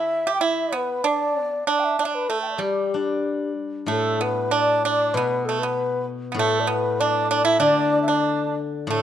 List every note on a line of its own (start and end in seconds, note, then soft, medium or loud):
0.00 0.23 E4 medium
0.00 0.32 E5 medium
0.27 0.40 G4 medium
0.35 0.45 G5 medium
0.41 0.71 E4 medium
0.41 0.77 E5 medium
0.72 1.02 B3 medium
0.72 1.09 B4 medium
1.04 1.43 D4 medium
1.04 1.67 D5 medium
1.43 1.63 B3 medium
1.67 1.96 D4 medium
1.67 1.81 D5 medium
1.80 1.86 G5 medium
1.84 2.01 E5 medium
1.99 2.04 D4 medium
1.99 2.04 D5 medium
1.99 2.09 E5 medium
2.05 2.27 D4 medium
2.05 2.16 D5 medium
2.15 2.31 B4 medium
2.29 2.58 A3 medium
2.29 2.41 A4 medium
2.42 2.48 G5 soft
2.48 2.53 D5 soft
2.48 2.50 E5 soft
2.57 4.52 G3 medium
2.57 3.52 G3 medium
2.57 2.60 A4 soft
2.61 3.53 G4 medium
2.94 4.22 D4 soft
3.86 5.15 A2 soft
3.86 4.18 A3 medium
3.90 4.24 A4 medium
4.21 4.51 B3 medium
4.21 4.53 B4 medium
4.51 4.82 D4 medium
4.51 4.83 D5 medium
4.85 5.14 D4 medium
4.85 5.16 D5 medium
5.14 6.37 B2 medium
5.14 5.45 B3 medium
5.14 5.47 B4 medium
5.45 5.62 A3 medium
5.45 5.61 A4 medium
5.60 6.05 B3 medium
5.60 6.06 B4 medium
6.32 7.61 A2 medium
6.32 6.38 B3 medium
6.37 6.67 A3 medium
6.37 6.62 A4 medium
6.60 6.68 D5 medium
6.67 6.97 B3 medium
6.67 7.02 B4 medium
7.00 7.30 D4 medium
7.00 7.30 D5 loud
7.30 7.44 D4 medium
7.30 7.47 D5 loud
7.45 7.59 E4 medium
7.45 7.64 E5 loud
7.60 9.02 D3 medium
7.60 8.05 D4 medium
7.60 8.02 D5 loud
8.03 8.11 E5 medium
8.08 8.54 D4 medium
8.08 8.58 D5 medium
8.87 9.02 A2 medium
8.87 9.02 A3 medium
8.87 9.02 A4 medium